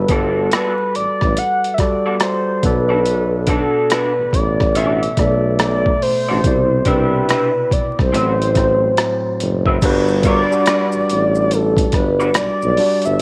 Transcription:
Already playing: G3 F#4 A4 B4
0.08 G1 B3 F#4 A4 D5, kick, closed hi-hat
0.13 A4
0.52 B3 F#4 A4 B4 D5, cross-stick, closed hi-hat
0.95 A1 D5, closed hi-hat
1.21 A1, kick, cross-stick
1.37 F#5, closed hi-hat
1.64 closed hi-hat
1.74 E5
1.78 G3 F#4 A4 D5, kick, cross-stick, closed hi-hat
1.82 D5
2.06 B3 F#4 A4 D5
2.20 C5, cross-stick, closed hi-hat
2.63 B1 B2 B3 A4 B4 D5, kick, closed hi-hat
2.89 D4 F#4 A4 D5
3.06 closed hi-hat
3.47 D4 F#4 A4 D5, kick, closed hi-hat
3.90 D4 F#4 A4 B4 D5, cross-stick, closed hi-hat
4.19 A1
4.33 A1 D5, kick, closed hi-hat
4.60 kick, cross-stick
4.75 D4 F#4 A4 D5 E5, closed hi-hat
5.03 closed hi-hat
5.17 B1 B2 A3 A4 D5 E5, kick, cross-stick, closed hi-hat
5.59 D5, cross-stick, closed hi-hat
5.86 kick
6.02 A1 C5, open hi-hat
6.29 A1 D4 F#4 A4 D5
6.44 C2 B2 C3 E4 D5, kick, closed hi-hat
6.85 C2 D4 G4 B4 E5, kick, closed hi-hat
7.28 D4 G4 B4 E5, cross-stick, closed hi-hat
7.71 C2 D5, kick, closed hi-hat
7.99 C2 C5, kick, cross-stick
8.13 A1 A2 F#3 C4 F#4 B4 C5 E5, closed hi-hat
8.42 closed hi-hat
8.55 A2 F#3 C4 C5, kick, cross-stick, closed hi-hat
8.97 cross-stick, closed hi-hat
9.40 F#1, closed hi-hat
9.66 C4 F#4 B4 E5, kick
9.82 G1 G3 D4 F#4 B4, kick, closed hi-hat, crash, maracas
10.08 maracas
10.23 C#4 F4 A#4 C#5 D5, kick, closed hi-hat, maracas
10.41 D4 F#4 B4 D5
10.51 G3 D4 F#4 D5, maracas
10.66 D4 F#4 B4 D5, finger snap, cross-stick, closed hi-hat, maracas
10.92 A1, maracas
11.10 A1, closed hi-hat, maracas
11.35 maracas
11.51 A4, closed hi-hat, maracas
11.77 kick, closed hi-hat, maracas
11.92 G1 B4, kick, cross-stick, closed hi-hat
12.20 D4 F#4 B4 D5, maracas
12.34 B1 D5, finger snap, cross-stick, closed hi-hat, maracas
12.62 B1, maracas
12.77 G3 D4 F#4 D5, open hi-hat
13.02 G1 E5, closed hi-hat, maracas

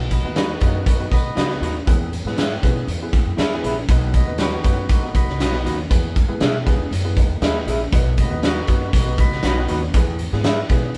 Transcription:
Already playing: B1
0.10 F#4 B4 D#5, kick, closed hi-hat
0.23 D#2 B3 D#4 F#4 B4
0.36 D#4 F#4 B4 D#5, snare, closed hi-hat
0.60 F#2 B3 D#4 F#4 B4, kick, closed hi-hat
0.86 D#4 F#4 B4, kick, closed hi-hat
1.00 B3 D#4 F#4 B4
1.11 B1 F#4 B4 D#5, kick, closed hi-hat
1.35 C#2 D#4 F#4 B4 D#5, snare, closed hi-hat
1.50 B3 D#4 F#4 B4, snare
1.61 D#2 D#4 F#4 B4 D#5, closed hi-hat
1.87 E2 B3 E4 G#4 B4, kick, closed hi-hat
2.13 closed hi-hat
2.25 G#2 B3 E4 G#4 B4, snare
2.37 E4 G#4 B4 E5, snare, closed hi-hat
2.63 B2 B3 E4 G#4 B4, kick, closed hi-hat
2.87 E2, closed hi-hat
3.02 B3 E4 G#4 B4
3.13 kick, closed hi-hat
3.25 F#2
3.37 E2 E4 G#4 B4 E5, snare, closed hi-hat
3.51 B3 E4 G#4 B4, snare
3.63 A#1 E4 G#4 B4 E5, closed hi-hat
3.89 B1 B3 D#4 F#4 B4, kick, closed hi-hat
4.12 F#4 B4 D#5, kick, closed hi-hat
4.26 D#2 B3 D#4 F#4 B4
4.38 D#4 F#4 B4 D#5, snare, closed hi-hat
4.64 F#2 B3 D#4 F#4 B4, kick, closed hi-hat
4.89 D#4 F#4 B4, kick, closed hi-hat
5.02 B3 D#4 F#4 B4
5.14 B1 F#4 B4 D#5, kick, closed hi-hat
5.27 C#2, snare
5.39 B1 D#4 F#4 B4 D#5, snare, closed hi-hat
5.52 B3 D#4 F#4 B4, snare
5.64 D#2 D#4 F#4 B4 D#5, closed hi-hat
5.90 E2 B3 E4 G#4 B4, kick, closed hi-hat
6.16 kick, closed hi-hat
6.28 G#2 B3 E4 G#4 B4
6.40 B2 E4 G#4 B4 E5, snare, closed hi-hat
6.66 B3 E4 G#4 B4, kick, closed hi-hat
6.78 E2
6.91 F#2, closed hi-hat
7.04 B3 E4 G#4 B4
7.17 D#4 B4, kick, closed hi-hat
7.29 E2
7.41 D#2 E4 F#4 G#4 B4 D#5 E5, snare, closed hi-hat
7.66 A#1 E4 G#4 B4 E5, closed hi-hat
7.92 B1 B3 D#4 F#4 B4, kick, closed hi-hat
8.17 F#4 B4 D#5, kick, closed hi-hat
8.30 D#2 B3 D#4 F#4 B4
8.43 D#4 F#4 B4 D#5, snare, closed hi-hat
8.67 F#2 B3 D#4 F#4 B4, kick, closed hi-hat
8.92 B1 D#4 F#4 B4, kick, closed hi-hat
9.05 B3 D#4 F#4 B4
9.18 F#4 B4 D#5, kick, closed hi-hat
9.31 C#2, snare
9.43 B1 D#4 F#4 B4 D#5, snare, closed hi-hat
9.57 B3 D#4 F#4 B4
9.68 D#2 D#4 F#4 B4 D#5, closed hi-hat
9.94 E2 B3 E4 G#4 B4, kick, closed hi-hat
10.19 closed hi-hat
10.32 G#2 B3 E4 G#4 B4, snare
10.43 E4 G#4 B4 E5, snare, closed hi-hat
10.69 B2 B3 E4 G#4 B4, kick, closed hi-hat
10.94 closed hi-hat

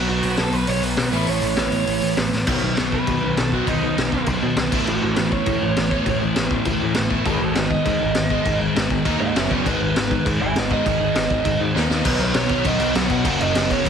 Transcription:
Already playing: B2 F#3 B3
0.09 B1 F#4
0.23 B1, open hi-hat
0.37 B1 A4, snare, open hi-hat
0.53 B1 B4, open hi-hat
0.67 B1 C#5, open hi-hat
0.82 B1 B4, open hi-hat
0.97 B1, snare, open hi-hat
1.12 A1 A2 E3 A3 C#4 E4 B4, open hi-hat
1.27 A1 C#5, open hi-hat
1.42 A1, open hi-hat
1.56 A1, snare, open hi-hat
1.71 A1, open hi-hat
1.87 A1, open hi-hat
2.01 A1, open hi-hat
2.17 A1, snare, open hi-hat
2.32 A1, snare
2.47 B1 B2 D#3 F#3 B3, kick, crash
2.62 B1 B2 D#3
2.77 B1 B2 D#3, snare, crash
2.92 B2 D#3 B4, kick
3.07 B2 D#3, kick, crash
3.22 B1 B2 D#3
3.37 B1 B2 D#3 A4, snare, crash
3.52 B2 D#3 F#3 F#4, kick
3.67 B1 B2 D#3 F#3 B3 D#4, kick, crash
3.83 B2 D#3
3.98 B1 B2 D#3, snare, crash
4.12 B1 B2 D#3, kick
4.26 B1 B2 D#3, kick, crash
4.42 B2 D#3
4.57 B1 B2 D#3, snare, crash
4.71 A1 A2 E3 A3, kick, crash
4.86 A1 A2 E3 F#4 B4, crash
5.02 A1 A2 E3 F#4 A4
5.15 A1 A2 E3 A3 F#4, snare, crash
5.32 A2 E3 C#5, kick
5.46 A2 E3, kick, crash
5.62 A1 A2 E3
5.77 A1 A2 E3, snare, crash
5.91 A2 E3 A3, kick
6.06 A1 A2 E3, kick, crash
6.21 A2 E3
6.36 A1 A2 E3, snare, crash
6.51 A1 A2 E3, kick
6.65 A1 A2 E3, kick, crash
6.80 A2 E3
6.95 A1 A2 E3, snare, crash
7.09 A1 A2 E3 A3, kick
7.25 G#1 G#2 D#3 G#3 G#4 B4, kick, crash
7.41 G#1 G#2 D#3 F#4 A4
7.54 G#1 G#2 D#3 D#4 F#4, snare, crash
7.70 G#2 D#3 D#5, kick
7.85 G#2 D#3, kick, crash
8.00 G#1 G#2 D#3
8.15 G#1 G#2 D#3, snare, crash
8.30 G#2 D#3 G#3, kick
8.45 G#1 G#2 D#3 G#3, kick, crash
8.60 G#2 D#3
8.75 G#1 G#2 D#3, snare, crash
8.90 G#1 G#2 D#3, kick
9.05 D#2 D#3 A#3 D#4, kick, crash
9.20 G#2 D#3 A#3 D#5 F#5
9.35 F#1 F#2 C#3 F#3 C#4 F#4 C#5 E5, snare, crash
9.50 F#1 F#3 C#4 F#4 B4 D5, kick
9.66 G#1 G#2 D#3 G#3 B4, kick, crash
9.81 G#1 G#2 D#3
9.96 G#1 G#2 D#3, snare, crash
10.11 G#2 D#3, kick
10.26 G#2 D#3, kick, crash
10.41 G#1 G#2 D#3 E5 G#5
10.56 G#1 G#2 D#3 D#5 F#5, snare, crash
10.71 G#2 D#3 G#3 D#5, kick
10.86 G#1 G#2 D#3 G#3, kick, crash
11.00 G#2 D#3
11.15 G#1 G#2 D#3, snare, crash
11.30 G#1 G#2 D#3, kick
11.45 G#1 G#2 D#3, kick, crash
11.60 G#2 D#3
11.75 D#2 D#3 A#3 D#4, snare
11.89 D#2 D#3 A#3 D#4, snare
12.03 B1 B2 F#3 B3 D#4, kick, crash
12.07 B4
12.20 B1 B4, crash
12.34 B1 C#5, snare, crash
12.49 B1 B2 F#3 B3, kick, crash
12.64 B1 B2 F#3 B3 D#4 D#5, kick, crash
12.80 B1, crash
12.95 B1 F#5, snare, crash
13.10 B1 F#5, kick, crash
13.23 F#1 F#2 C#3 F#3 A#3 C#4, kick, crash
13.40 F#1 D#5, crash
13.55 F#1, snare, crash
13.70 F#1 F#2 C#3 F#3 C#5, kick, crash
13.84 F#1 F#2 C#3 F#3 A#3, kick, crash

